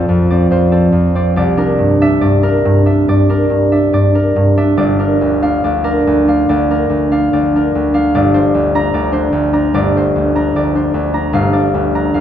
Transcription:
Already playing: A#1 A#3 C4 A4 A#4 C5 D5
0.09 F2
0.30 C4 D5
0.51 F2 C5
0.72 C4 A4
0.92 F2
1.15 C4 D5
1.36 C2 D5
1.57 D4 A#4
1.78 G2
2.01 D4 E5
2.21 G2 D5
2.43 D4 A#4
2.65 G2
2.86 D4 E5
3.08 G2 D5
3.29 D4 A#4
3.50 G2
3.72 D4 E5
3.93 G2 D5
4.15 D4 A#4
4.36 G2
4.57 D4 E5
4.77 G1 D5
4.99 D4 A#4
5.21 D2
5.42 D4 F5
5.64 D2 D5
5.84 D4 A#4
6.07 D2
6.28 D4 F5
6.49 D2 D5
6.71 D4 A#4
6.90 D2
7.12 D4 F5
7.33 D2 D5
7.56 D4 A#4
7.75 D2
7.94 D4 F5
8.14 G1 D5
8.34 D4 C5
8.54 D2
8.75 D4 A#5
8.94 D2 D5
9.12 D4 C5
9.32 D2
9.53 D4 A#5
9.74 G1 D5
9.96 D2 C5
10.16 D2
10.35 D4 A#5
10.56 D2 D5
10.75 D4 C5
10.94 D2
11.13 D4 A#5
11.33 G1 F5
11.53 D4 D5
11.74 D2
11.95 D4 A#5
12.14 D2 F5

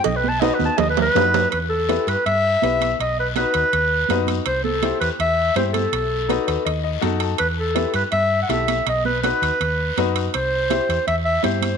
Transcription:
0.04 B1 D#5, cowbell, high conga, low conga, long guiro
0.17 B4
0.24 high conga
0.29 A5
0.41 D#4 F#4 B4 D#5, high conga, high timbale, short guiro
0.54 B4
0.59 D#2, high conga, short guiro
0.65 A5
0.78 D#2 D#5, cowbell, low conga, low timbale, long guiro
0.90 B4
0.97 low conga, low timbale
1.02 B4
1.15 F#2 D#4 F#4 B4, low conga, low timbale, short guiro
1.34 low conga, low timbale, short guiro
1.50 E2 B4, high conga, high timbale, long guiro
1.69 A4
1.89 E4 G4 B4, high conga, high timbale, short guiro
2.07 G2 B4, high timbale, short guiro
2.26 G2 E5, high conga, high timbale, long guiro
2.62 B1 E4 G4 B4, high conga, high timbale, short guiro
2.80 high conga, high timbale, short guiro
2.99 B1 D#5, high conga, high timbale, long guiro
3.20 B4
3.36 D#4 F#4 B4, high conga, high timbale, short guiro
3.54 D#2, high timbale, short guiro
3.73 D#2, high conga, high timbale, long guiro
4.09 F#2 D#4 F#4 B4, high conga, high timbale, low timbale, short guiro
4.27 high conga, high timbale, short guiro
4.46 C2 C5, high conga, high timbale, long guiro
4.64 A4, high conga
4.83 E4 G4 C5, high conga, high timbale, short guiro
5.00 E2 B4, high timbale, short guiro
5.19 E2 E5, high conga, high timbale, long guiro
5.56 G2 E4 G4 C5, high conga, high timbale, low timbale, short guiro
5.73 A4, high conga, high timbale, short guiro
5.92 B1, high conga, high timbale, long guiro
6.29 D#4 F#4 B4, high conga, high timbale, short guiro
6.47 D#2 B4, high timbale, short guiro
6.65 D#2 D#5, high conga, high timbale, long guiro
6.84 D#5
7.01 F#2 D#4 F#4 A4 F#5, high conga, high timbale, short guiro
7.20 A5, high timbale, short guiro
7.38 E2 B4, high conga, high timbale, long guiro
7.60 A4
7.75 E4 G4 B4, high conga, high timbale, short guiro
7.94 G2 B4, high timbale, short guiro
8.12 G2 E5, high conga, high timbale, long guiro
8.42 F#5
8.49 B1 E4 G4 A4 E5, high conga, high timbale, short guiro
8.68 high conga, high timbale, short guiro
8.86 B1 D#5, high conga, high timbale, long guiro
9.05 B4, high conga
9.23 D#4 F#4 B4, high conga, high timbale, short guiro
9.42 D#2, high timbale, short guiro
9.60 D#2, high conga, high timbale, long guiro
9.97 F#2 D#4 F#4 B4, high conga, high timbale, short guiro
10.16 high timbale, short guiro
10.34 C2 C5, high conga, high timbale, long guiro
10.70 E4 G4 C5, high conga, high timbale, short guiro
10.89 E2, high timbale, short guiro
11.07 E2 E5, high conga, high timbale, long guiro
11.25 E5
11.43 G2 E4 G4 C5, high conga, high timbale, short guiro
11.62 high conga, high timbale, short guiro

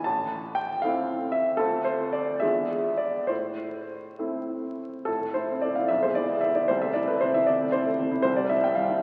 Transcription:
0.04 A1 A5
0.55 G5
0.82 A3 C4 E4 F5
1.32 E5
1.57 D2 A3 C4 F4 A4
1.85 C5
2.13 D5
2.40 E2 G#3 D4 F4 E5
2.98 D5
3.27 A2 C5
4.19 A3 C4 E4
5.05 A2 A4
5.21 A3
5.34 E4 C5
5.50 C4
5.62 A3 D5
5.75 E4 F5
5.88 B1 E5
6.03 G#3 C5
6.15 E4 D5
6.30 B3
6.41 G#3 E5
6.55 E4 D5
6.68 C2 C5
6.82 A3 E5
6.94 E4 D5
7.07 A3 B4
7.21 C3 C5
7.34 E4 E5
7.46 C3 D5
7.62 A3
7.72 E4 C5
7.86 A3
7.99 C3
8.12 E4
8.22 C2 C5
8.36 G3 D5
8.49 E4 E5
8.64 C4 G5
8.75 G3 F5
8.91 E4

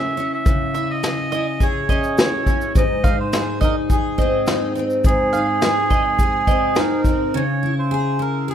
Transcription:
Already playing: C#3 C#4 E4 G#4 E5
0.17 C#4, shaker
0.34 E5
0.46 C#3, kick, shaker
0.74 E4 E5, shaker
0.91 D#5
1.03 G#4, snare, shaker
1.32 E4 D#5, shaker
1.60 G#4 C#5, kick, shaker
1.89 C#4 D#5, kick, shaker
2.04 shaker
2.18 E4 C#5, snare, shaker
2.46 C#4, kick, shaker
2.61 shaker
2.75 G#2 D#5, kick, shaker
3.04 D#4 F5, kick, shaker
3.20 C5
3.33 G#4, snare, shaker
3.61 D#4 A#4 D#5, kick, shaker
3.90 G#4, kick, shaker
4.18 C4 D#5, kick, shaker
4.47 D#4, snare, shaker
4.75 C4, shaker
4.90 shaker
5.04 G#2 G#4, kick, shaker
5.33 D#4 F5, shaker
5.62 G#4, snare, shaker
5.90 D#4 D#5, kick, shaker
6.19 G#4, kick, shaker
6.47 C4 D#5, kick, shaker
6.75 D#4 A#4, snare, shaker
7.04 C4, kick, shaker
7.34 C#3 C#5
7.63 E4
7.78 C5
7.91 G#4
8.19 E4 A#4
8.48 G#4

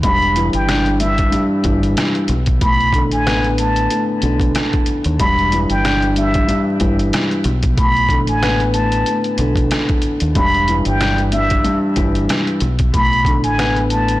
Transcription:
0.03 E1 G2 B5, kick, closed hi-hat
0.22 closed hi-hat
0.36 E3, closed hi-hat
0.53 G1 G5, closed hi-hat
0.68 D4, cross-stick, snare, closed hi-hat
0.86 closed hi-hat
1.00 G2 E5, closed hi-hat
1.18 kick, closed hi-hat
1.31 G2, closed hi-hat
1.64 G1 E3, kick, closed hi-hat
1.83 closed hi-hat
1.97 cross-stick, snare, closed hi-hat
2.15 closed hi-hat
2.28 B1, closed hi-hat
2.46 kick, closed hi-hat
2.61 A2 B5, kick, closed hi-hat
2.81 closed hi-hat
2.93 D3, kick, closed hi-hat
3.11 A1 G#5, closed hi-hat
3.26 B3, cross-stick, snare, closed hi-hat
3.44 closed hi-hat
3.58 A2 A5, closed hi-hat
3.76 closed hi-hat
3.90 A2, closed hi-hat
4.22 B1 D3, closed hi-hat
4.40 kick, closed hi-hat
4.55 cross-stick, snare, closed hi-hat
4.73 kick, closed hi-hat
4.86 closed hi-hat
5.04 D#2, closed hi-hat
5.19 E1 G2 B5, kick, closed hi-hat
5.39 closed hi-hat
5.52 E3, closed hi-hat
5.70 G1 G5, closed hi-hat
5.85 D4, cross-stick, snare, closed hi-hat
6.02 closed hi-hat
6.16 G2 E5, closed hi-hat
6.34 kick, closed hi-hat
6.48 G2, closed hi-hat
6.80 G1 E3, kick, closed hi-hat
6.99 closed hi-hat
7.13 cross-stick, snare, closed hi-hat
7.31 closed hi-hat
7.44 B1, closed hi-hat
7.63 kick, closed hi-hat
7.77 A2 B5, kick, closed hi-hat
7.97 closed hi-hat
8.09 D3, kick, closed hi-hat
8.27 A1 G#5, closed hi-hat
8.42 B3, cross-stick, snare, closed hi-hat
8.60 closed hi-hat
8.73 A2 A5, closed hi-hat
8.92 closed hi-hat
9.06 A2, closed hi-hat
9.24 closed hi-hat
9.38 B1 D3, closed hi-hat
9.56 kick, closed hi-hat
9.71 cross-stick, snare, closed hi-hat
9.89 kick, closed hi-hat
10.02 closed hi-hat
10.20 D#2, closed hi-hat
10.35 E1 G2 B5, kick, closed hi-hat
10.54 closed hi-hat
10.68 E3, closed hi-hat
10.85 G1 G5, closed hi-hat
11.01 D4, cross-stick, snare, closed hi-hat
11.18 closed hi-hat
11.32 G2 E5, closed hi-hat
11.50 kick, closed hi-hat
11.64 G2, closed hi-hat
11.96 G1 E3, kick, closed hi-hat
12.15 closed hi-hat
12.29 cross-stick, snare, closed hi-hat
12.47 closed hi-hat
12.60 B1, closed hi-hat
12.79 kick, closed hi-hat
12.94 A2 B5, kick, closed hi-hat
13.13 closed hi-hat
13.25 D3, kick, closed hi-hat
13.44 A1 G#5, closed hi-hat
13.58 B3, cross-stick, snare, closed hi-hat
13.76 closed hi-hat
13.90 A2 A5, closed hi-hat
14.08 closed hi-hat

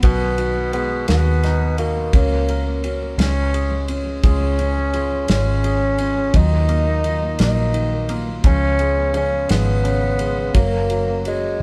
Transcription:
Already playing: B3 C#4
0.03 B1 B2 D#3 B3 F#4, kick, ride
0.22 B3
0.38 D#4 F#4, ride
0.56 B3
0.73 G#3 B3 F#4, ride
0.90 B3
1.08 D#2 D#3 B3 F#4, snare, ride
1.26 B3
1.43 D#4, snare, ride
1.61 B3
1.78 A#3 F#4, ride
1.96 B3
2.13 C#2 A#3 C#4 F#4, kick, ride
2.31 A#3
2.49 C#4 A#4, ride
2.67 A#3
2.84 C#4 F#4, ride
3.01 A#3
3.18 C#2 G#3 C#4 F4, snare, ride
3.35 G#3
3.52 C#4 G#4, ride
3.70 G#3
3.88 C#4 F4, ride
4.06 G#3
4.24 C#2 G#3 C#4 F4 G#4, kick, ride
4.42 G#3
4.59 C#4, ride
4.76 G#3
4.94 F4 G#4, ride
5.12 G#3
5.28 G#1 G#3 C#4 F4, snare, ride
5.45 G#3
5.64 C#4 G#4, ride
5.81 G#3
5.98 C#4 F4, ride
6.16 G#3
6.33 D#2 D#3 F#3 D#4 F4, kick, ride
6.51 A#3
6.69 A#3 D#4, ride
6.86 A#3
7.04 D#3 F4, ride
7.22 A#3
7.39 A#1 F#3 A#3 D#4 F4, snare, ride
7.58 A#3
7.74 D#3 D#4, ride
7.93 A#3
8.09 A#3 F4, ride
8.28 A#3
8.44 C#2 C#3 F3 C#4 G#4, kick, ride
8.63 B3
8.79 G#3 C#4, ride
8.98 B3
9.14 C#3 C#4 G#4, ride
9.32 B3
9.49 G#1 F3 G#3 B3 G#4, snare, ride
9.67 B3
9.84 C#3 C#4, ride
10.01 B3
10.19 G#3 G#4, ride
10.37 B3
10.54 F#1 F#3 A#3 F#4, kick, ride
10.73 A#3
10.90 F#3 C#4, ride
11.07 A#3
11.25 F#3 G#3 F#4, ride
11.43 A#3

